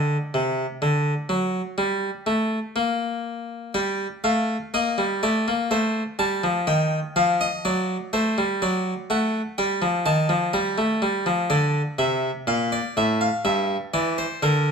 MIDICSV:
0, 0, Header, 1, 2, 480
1, 0, Start_track
1, 0, Key_signature, -2, "minor"
1, 0, Tempo, 977199
1, 1845, Time_signature, 4, 2, 24, 8
1, 2810, Tempo, 967742
1, 7272, End_track
2, 0, Start_track
2, 0, Title_t, "Harpsichord"
2, 0, Program_c, 0, 6
2, 0, Note_on_c, 0, 50, 80
2, 76, Note_off_c, 0, 50, 0
2, 168, Note_on_c, 0, 48, 77
2, 316, Note_off_c, 0, 48, 0
2, 403, Note_on_c, 0, 50, 76
2, 551, Note_off_c, 0, 50, 0
2, 635, Note_on_c, 0, 54, 79
2, 785, Note_off_c, 0, 54, 0
2, 874, Note_on_c, 0, 55, 84
2, 1024, Note_off_c, 0, 55, 0
2, 1112, Note_on_c, 0, 57, 85
2, 1265, Note_off_c, 0, 57, 0
2, 1355, Note_on_c, 0, 58, 88
2, 1828, Note_off_c, 0, 58, 0
2, 1839, Note_on_c, 0, 55, 62
2, 1839, Note_on_c, 0, 79, 73
2, 1992, Note_off_c, 0, 55, 0
2, 1992, Note_off_c, 0, 79, 0
2, 2082, Note_on_c, 0, 77, 76
2, 2083, Note_on_c, 0, 57, 60
2, 2235, Note_off_c, 0, 77, 0
2, 2236, Note_off_c, 0, 57, 0
2, 2328, Note_on_c, 0, 58, 54
2, 2329, Note_on_c, 0, 75, 62
2, 2446, Note_on_c, 0, 55, 56
2, 2448, Note_off_c, 0, 58, 0
2, 2480, Note_off_c, 0, 75, 0
2, 2567, Note_off_c, 0, 55, 0
2, 2568, Note_on_c, 0, 57, 61
2, 2570, Note_on_c, 0, 74, 69
2, 2687, Note_off_c, 0, 57, 0
2, 2691, Note_on_c, 0, 58, 54
2, 2718, Note_off_c, 0, 74, 0
2, 2804, Note_on_c, 0, 57, 59
2, 2806, Note_on_c, 0, 72, 66
2, 2807, Note_off_c, 0, 58, 0
2, 2954, Note_off_c, 0, 57, 0
2, 2955, Note_off_c, 0, 72, 0
2, 3043, Note_on_c, 0, 55, 57
2, 3043, Note_on_c, 0, 81, 73
2, 3162, Note_off_c, 0, 55, 0
2, 3164, Note_on_c, 0, 53, 58
2, 3194, Note_off_c, 0, 81, 0
2, 3282, Note_on_c, 0, 51, 63
2, 3282, Note_on_c, 0, 79, 73
2, 3284, Note_off_c, 0, 53, 0
2, 3434, Note_off_c, 0, 79, 0
2, 3435, Note_off_c, 0, 51, 0
2, 3524, Note_on_c, 0, 77, 71
2, 3525, Note_on_c, 0, 53, 55
2, 3645, Note_off_c, 0, 77, 0
2, 3647, Note_on_c, 0, 75, 77
2, 3677, Note_off_c, 0, 53, 0
2, 3767, Note_off_c, 0, 75, 0
2, 3767, Note_on_c, 0, 54, 58
2, 3767, Note_on_c, 0, 74, 73
2, 3918, Note_off_c, 0, 54, 0
2, 3918, Note_off_c, 0, 74, 0
2, 4006, Note_on_c, 0, 57, 56
2, 4006, Note_on_c, 0, 72, 69
2, 4126, Note_off_c, 0, 57, 0
2, 4129, Note_on_c, 0, 55, 60
2, 4157, Note_off_c, 0, 72, 0
2, 4247, Note_off_c, 0, 55, 0
2, 4249, Note_on_c, 0, 54, 54
2, 4249, Note_on_c, 0, 74, 63
2, 4397, Note_off_c, 0, 54, 0
2, 4398, Note_off_c, 0, 74, 0
2, 4486, Note_on_c, 0, 57, 59
2, 4489, Note_on_c, 0, 78, 74
2, 4635, Note_off_c, 0, 57, 0
2, 4637, Note_off_c, 0, 78, 0
2, 4725, Note_on_c, 0, 79, 76
2, 4727, Note_on_c, 0, 55, 60
2, 4842, Note_on_c, 0, 53, 63
2, 4843, Note_off_c, 0, 55, 0
2, 4873, Note_off_c, 0, 79, 0
2, 4960, Note_off_c, 0, 53, 0
2, 4960, Note_on_c, 0, 81, 74
2, 4962, Note_on_c, 0, 51, 62
2, 5078, Note_on_c, 0, 53, 58
2, 5079, Note_off_c, 0, 51, 0
2, 5110, Note_off_c, 0, 81, 0
2, 5197, Note_off_c, 0, 53, 0
2, 5197, Note_on_c, 0, 82, 77
2, 5198, Note_on_c, 0, 55, 64
2, 5317, Note_off_c, 0, 55, 0
2, 5318, Note_on_c, 0, 57, 68
2, 5437, Note_off_c, 0, 57, 0
2, 5439, Note_on_c, 0, 55, 60
2, 5557, Note_off_c, 0, 55, 0
2, 5559, Note_on_c, 0, 53, 64
2, 5665, Note_off_c, 0, 82, 0
2, 5676, Note_on_c, 0, 50, 80
2, 5676, Note_on_c, 0, 74, 70
2, 5677, Note_off_c, 0, 53, 0
2, 5827, Note_off_c, 0, 50, 0
2, 5827, Note_off_c, 0, 74, 0
2, 5917, Note_on_c, 0, 48, 77
2, 5918, Note_on_c, 0, 76, 68
2, 6069, Note_off_c, 0, 48, 0
2, 6070, Note_off_c, 0, 76, 0
2, 6159, Note_on_c, 0, 46, 70
2, 6161, Note_on_c, 0, 77, 63
2, 6281, Note_off_c, 0, 77, 0
2, 6283, Note_on_c, 0, 74, 58
2, 6311, Note_off_c, 0, 46, 0
2, 6402, Note_off_c, 0, 74, 0
2, 6406, Note_on_c, 0, 45, 81
2, 6408, Note_on_c, 0, 76, 70
2, 6524, Note_on_c, 0, 77, 61
2, 6525, Note_off_c, 0, 76, 0
2, 6556, Note_off_c, 0, 45, 0
2, 6643, Note_off_c, 0, 77, 0
2, 6643, Note_on_c, 0, 43, 74
2, 6643, Note_on_c, 0, 76, 63
2, 6795, Note_off_c, 0, 43, 0
2, 6795, Note_off_c, 0, 76, 0
2, 6885, Note_on_c, 0, 52, 86
2, 6885, Note_on_c, 0, 74, 68
2, 7005, Note_off_c, 0, 74, 0
2, 7007, Note_on_c, 0, 72, 70
2, 7038, Note_off_c, 0, 52, 0
2, 7127, Note_off_c, 0, 72, 0
2, 7128, Note_on_c, 0, 50, 85
2, 7128, Note_on_c, 0, 70, 75
2, 7272, Note_off_c, 0, 50, 0
2, 7272, Note_off_c, 0, 70, 0
2, 7272, End_track
0, 0, End_of_file